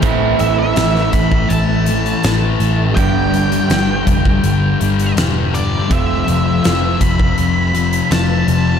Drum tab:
HH |x-x-x-x-x-xxx-x-|x-xxx-x-x-xxx-x-|x-x-x-x-x-xxx-x-|
SD |----oo------o---|----o-------o---|----o-------o---|
BD |o-----oo--------|o-----oo--------|o-----oo--------|